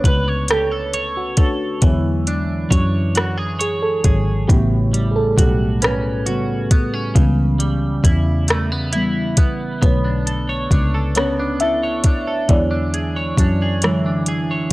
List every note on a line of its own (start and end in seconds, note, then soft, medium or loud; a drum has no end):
0.00 1.83 D3 soft
0.00 1.39 A3 soft
0.00 2.66 B3 medium
0.00 1.84 C#4 soft
0.00 2.27 D4 soft
0.00 0.07 B4 medium
0.00 1.39 C#5 medium
0.00 kick medium
0.05 1.78 C#2 medium
0.05 0.28 B4 medium
0.05 0.52 B4 medium
0.05 closed hi-hat medium
0.28 0.93 C#5 soft
0.48 0.72 G4 medium
0.48 1.18 A4 medium
0.48 cross-stick medium
0.48 closed hi-hat medium
0.72 1.37 A4 soft
0.94 2.31 C#5 medium
0.94 closed hi-hat soft
1.17 1.37 F#4 medium
1.37 1.79 A3 soft
1.37 1.78 D4 soft
1.37 1.84 F#4 medium
1.37 1.91 A4 soft
1.37 1.79 C#5 soft
1.37 kick medium
1.37 closed hi-hat medium
1.82 2.67 E2 medium
1.82 3.12 D3 soft
1.82 5.32 E3 medium
1.82 3.12 F#3 soft
1.82 3.12 G#3 soft
1.82 1.97 E4 medium
1.82 3.12 C#5 medium
1.82 kick loud
1.82 closed hi-hat medium
2.27 4.58 D4 soft
2.27 closed hi-hat soft
2.70 4.00 F#2 loud
2.70 3.59 C#5 medium
2.70 kick medium
2.70 closed hi-hat medium
3.15 3.38 F#4 medium
3.15 cross-stick medium
3.15 closed hi-hat medium
3.38 4.04 G#4 medium
3.59 3.83 G#4 medium
3.59 4.96 C#5 medium
3.59 closed hi-hat medium
3.82 3.92 A4 medium
4.04 4.45 G#1 medium
4.04 4.45 D3 soft
4.04 4.45 F#3 soft
4.04 4.45 G#3 soft
4.04 4.50 G#4 medium
4.04 4.58 G#4 medium
4.04 4.45 C#5 soft
4.04 kick medium
4.04 closed hi-hat medium
4.48 5.34 A1 loud
4.48 7.15 A2 medium
4.48 5.08 C#3 medium
4.48 5.08 G3 soft
4.48 5.08 B3 medium
4.48 5.08 F#4 soft
4.48 5.11 G4 medium
4.48 kick loud
4.48 closed hi-hat medium
4.93 7.59 G3 medium
4.93 closed hi-hat soft
5.11 5.16 G#4 medium
5.16 5.38 A4 medium
5.38 7.12 B1 medium
5.38 6.25 F#4 medium
5.38 5.84 G4 medium
5.38 kick medium
5.38 closed hi-hat medium
5.82 6.71 C#4 medium
5.82 6.24 B4 medium
5.82 cross-stick medium
5.82 closed hi-hat medium
6.26 6.68 C#3 soft
6.26 6.68 G3 soft
6.26 6.68 B3 medium
6.26 7.24 F#4 medium
6.26 6.68 F#4 soft
6.26 closed hi-hat soft
6.71 6.93 B3 medium
6.71 kick medium
6.71 closed hi-hat medium
6.93 7.24 C#4 medium
7.15 8.01 C#2 loud
7.15 9.82 C#3 medium
7.15 8.94 E3 medium
7.15 8.95 G3 soft
7.15 8.94 B3 medium
7.15 kick loud
7.15 closed hi-hat medium
7.59 9.81 G3 medium
7.59 closed hi-hat medium
8.04 9.38 E2 medium
8.04 8.91 E4 medium
8.04 kick medium
8.04 closed hi-hat medium
8.48 8.72 A3 medium
8.48 cross-stick medium
8.48 closed hi-hat medium
8.72 9.36 B3 soft
8.93 9.34 E3 soft
8.93 9.35 G3 soft
8.93 9.35 B3 medium
8.93 9.91 E4 medium
8.93 closed hi-hat medium
9.37 9.78 A1 medium
9.37 9.82 B3 medium
9.37 kick medium
9.37 closed hi-hat medium
9.82 10.67 B1 medium
9.82 10.42 D3 soft
9.82 10.42 A3 soft
9.82 11.16 B3 medium
9.82 11.20 B4 medium
9.82 kick loud
9.82 closed hi-hat medium
9.86 11.13 B3 medium
9.86 10.43 C#5 medium
10.04 10.72 D4 soft
10.27 10.93 A4 soft
10.27 closed hi-hat medium
10.49 11.83 C#5 medium
10.71 12.45 C#2 medium
10.71 11.39 D4 soft
10.71 kick medium
10.71 closed hi-hat medium
10.94 11.60 A4 medium
11.15 13.19 B3 medium
11.15 11.59 C#4 medium
11.15 11.62 C#5 medium
11.15 cross-stick medium
11.15 closed hi-hat medium
11.39 12.06 D4 medium
11.60 12.46 E4 medium
11.60 12.26 A4 medium
11.60 12.52 E5 medium
11.60 closed hi-hat soft
11.83 12.74 C#5 medium
12.04 12.70 D4 soft
12.04 kick medium
12.04 closed hi-hat medium
12.27 12.58 A4 medium
12.49 13.34 E2 loud
12.49 13.08 D3 soft
12.49 13.83 E3 medium
12.49 13.08 F#3 soft
12.49 13.09 G#3 soft
12.49 14.68 D4 medium
12.49 13.09 C#5 medium
12.49 14.67 D5 medium
12.49 kick loud
12.49 closed hi-hat medium
12.71 13.37 D4 medium
12.94 13.60 G#4 medium
12.94 closed hi-hat soft
13.16 14.51 C#5 medium
13.38 14.67 F#2 medium
13.38 14.05 D4 medium
13.38 kick medium
13.38 closed hi-hat medium
13.62 14.27 G#4 medium
13.82 14.23 D3 soft
13.82 14.73 E3 medium
13.82 14.23 F#3 soft
13.82 14.23 G#3 soft
13.82 14.24 C#5 medium
13.82 cross-stick medium
13.82 closed hi-hat medium
14.06 14.71 D4 medium
14.26 14.73 G#4 medium
14.26 closed hi-hat medium
14.51 14.73 C#5 medium